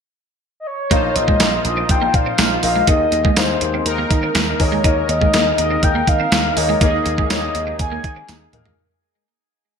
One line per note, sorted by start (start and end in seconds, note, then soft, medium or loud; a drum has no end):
0.60 0.68 D#5 medium
0.67 1.18 C#5 medium
0.90 1.09 A#1 medium
0.90 1.61 A#2 medium
0.90 2.86 F3 medium
0.90 1.20 A#3 medium
0.90 8.74 A#3 medium
0.90 1.00 A#3 medium
0.90 8.74 D#4 medium
0.90 1.21 D#4 medium
0.90 2.84 D#4 medium
0.90 1.21 F4 medium
0.90 2.84 F4 medium
0.90 2.84 C5 medium
0.90 1.21 D#5 medium
0.90 kick loud
0.90 closed hi-hat medium
1.16 1.33 A#1 medium
1.16 1.65 D#5 medium
1.16 muted clean electric guitar stroke soft
1.16 closed hi-hat medium
1.28 1.37 G#3 medium
1.28 kick medium
1.39 1.58 A#1 loud
1.39 1.99 A#3 medium
1.39 1.50 A#3 medium
1.39 1.99 D#4 medium
1.39 2.00 F4 medium
1.39 2.00 D#5 medium
1.39 snare loud
1.39 closed hi-hat medium
1.39 tambourine medium
1.65 1.82 A#1 medium
1.65 1.92 D#5 medium
1.65 muted clean electric guitar stroke soft
1.65 closed hi-hat medium
1.77 1.86 C4 medium
1.89 2.07 A#1 medium
1.89 2.16 G5 medium
1.89 kick loud
1.89 closed hi-hat medium
2.02 2.11 A#3 medium
2.14 2.32 A#2 medium
2.14 2.64 F5 medium
2.14 muted clean electric guitar stroke soft
2.14 kick medium
2.14 closed hi-hat medium
2.26 2.36 C4 medium
2.38 2.56 A#1 loud
2.38 2.48 A#3 medium
2.38 snare loud
2.38 closed hi-hat medium
2.38 tambourine medium
2.63 2.81 A#1 loud
2.63 2.78 A#3 medium
2.63 2.78 D#4 medium
2.63 2.78 F4 medium
2.63 2.78 D#5 medium
2.63 2.87 F5 medium
2.63 muted clean electric guitar stroke soft
2.63 open hi-hat medium
2.76 2.85 G#3 medium
2.87 3.05 D#2 medium
2.87 3.58 D#3 medium
2.87 8.74 G#3 medium
2.87 3.17 A#3 medium
2.87 3.17 D#4 medium
2.87 2.97 D#4 medium
2.87 3.18 G#4 medium
2.87 3.18 D#5 medium
2.87 3.40 D#5 loud
2.87 kick loud
2.87 closed hi-hat loud
3.12 3.30 D#2 medium
3.12 muted clean electric guitar stroke soft
3.12 closed hi-hat medium
3.25 3.34 G#3 medium
3.25 kick medium
3.36 3.55 D#2 loud
3.36 3.96 A#3 medium
3.36 3.47 A#3 medium
3.36 3.96 D#4 medium
3.36 3.96 G#4 medium
3.36 3.89 C5 medium
3.36 3.97 F5 medium
3.36 snare loud
3.36 closed hi-hat medium
3.36 tambourine medium
3.61 3.79 D#2 medium
3.61 muted clean electric guitar stroke soft
3.61 closed hi-hat medium
3.74 3.83 C4 medium
3.86 4.04 D#2 loud
3.86 6.77 D#4 medium
3.86 6.77 A#4 medium
3.86 4.62 A#4 medium
3.86 closed hi-hat loud
3.98 4.08 A#3 medium
4.11 4.28 D#3 medium
4.11 muted clean electric guitar stroke soft
4.11 kick medium
4.11 closed hi-hat medium
4.23 4.32 C4 medium
4.35 4.53 D#2 loud
4.35 4.45 A#3 medium
4.35 snare loud
4.35 closed hi-hat medium
4.35 tambourine medium
4.59 4.78 D#2 loud
4.59 4.74 A#3 medium
4.59 4.75 D#4 medium
4.59 4.75 G#4 medium
4.59 5.12 C#5 medium
4.59 4.75 D#5 medium
4.59 muted clean electric guitar stroke soft
4.59 kick medium
4.59 open hi-hat medium
4.72 4.82 G#3 medium
4.84 5.02 D#2 loud
4.84 5.54 D#3 medium
4.84 5.14 A#3 medium
4.84 5.14 D#4 medium
4.84 4.94 D#4 medium
4.84 5.14 G#4 medium
4.84 5.14 D#5 medium
4.84 kick loud
4.84 closed hi-hat loud
5.09 5.27 D#2 medium
5.09 5.59 D#5 loud
5.09 muted clean electric guitar stroke soft
5.09 closed hi-hat medium
5.21 5.31 G#3 medium
5.21 kick medium
5.33 5.51 D#2 loud
5.33 5.93 A#3 medium
5.33 5.43 A#3 medium
5.33 5.93 D#4 medium
5.33 5.93 G#4 medium
5.33 5.93 D#5 medium
5.33 snare loud
5.33 closed hi-hat medium
5.33 tambourine medium
5.58 5.76 D#2 loud
5.58 5.85 D#5 loud
5.58 muted clean electric guitar stroke soft
5.58 closed hi-hat medium
5.71 5.80 C4 medium
5.83 6.01 D#2 loud
5.83 6.10 G5 loud
5.83 kick loud
5.83 closed hi-hat medium
5.95 6.05 A#3 medium
6.07 6.25 D#3 loud
6.07 6.59 F5 loud
6.07 muted clean electric guitar stroke soft
6.07 kick medium
6.07 closed hi-hat medium
6.20 6.29 C4 medium
6.32 6.50 D#2 loud
6.32 6.42 A#3 medium
6.32 snare loud
6.32 closed hi-hat medium
6.32 tambourine medium
6.56 6.74 D#2 loud
6.56 6.71 A#3 medium
6.56 6.71 D#4 medium
6.56 6.72 G#4 medium
6.56 6.72 C#5 medium
6.56 6.82 D#5 loud
6.56 muted clean electric guitar stroke soft
6.56 open hi-hat medium
6.69 6.78 G#3 medium
6.81 6.99 D#2 loud
6.81 7.51 D#3 medium
6.81 7.11 A#3 medium
6.81 8.74 A#3 medium
6.81 7.11 D#4 medium
6.81 6.91 D#4 loud
6.81 8.74 D#4 medium
6.81 7.11 G#4 medium
6.81 8.74 G#4 medium
6.81 7.11 A#4 medium
6.81 7.27 D#5 loud
6.81 kick loud
6.81 closed hi-hat loud
7.06 7.24 D#2 loud
7.06 muted clean electric guitar stroke soft
7.06 closed hi-hat medium
7.18 7.28 G#3 medium
7.18 kick medium
7.30 7.48 D#2 loud
7.30 7.89 A#3 medium
7.30 7.40 A#3 medium
7.30 7.90 D#4 medium
7.30 7.36 G4 medium
7.30 7.90 C#5 medium
7.30 7.77 D#5 loud
7.30 snare loud
7.30 closed hi-hat medium
7.30 tambourine medium
7.36 7.93 G#4 medium
7.55 7.73 D#2 medium
7.55 muted clean electric guitar stroke soft
7.55 closed hi-hat medium
7.67 7.77 C4 medium
7.79 7.97 D#2 loud
7.79 8.50 G#5 loud
7.79 kick loud
7.79 closed hi-hat loud
7.92 8.01 A#3 medium
8.04 8.22 D#3 loud
8.04 muted clean electric guitar stroke soft
8.04 kick medium
8.04 closed hi-hat medium
8.16 8.26 C4 medium
8.28 8.46 D#2 loud
8.28 8.38 A#3 medium
8.28 snare medium
8.28 closed hi-hat medium
8.28 tambourine medium
8.53 8.71 D#2 loud
8.53 8.68 A#3 medium
8.53 8.68 D#4 medium
8.53 8.68 G#4 medium
8.53 8.68 A#4 loud
8.53 muted clean electric guitar stroke soft
8.53 closed hi-hat medium
8.53 mid tom medium
8.66 8.75 G#3 medium
8.66 floor tom medium